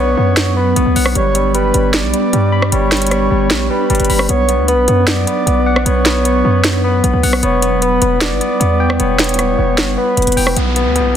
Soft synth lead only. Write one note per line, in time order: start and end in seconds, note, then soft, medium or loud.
0.00 0.53 C#5 loud
0.56 0.75 B4 medium
1.15 1.52 C#5 loud
1.55 1.91 B4 medium
1.94 2.68 D5 medium
2.72 3.66 C#5 loud
3.70 4.25 B4 medium
4.29 4.66 C#5 loud
4.68 5.05 B4 medium
5.08 5.82 D5 loud
5.86 6.80 C#5 loud
6.84 7.03 B4 medium
7.43 7.80 C#5 loud
7.82 8.19 B4 medium
8.21 8.96 D5 medium
9.00 9.94 C#5 loud
9.98 10.53 B4 medium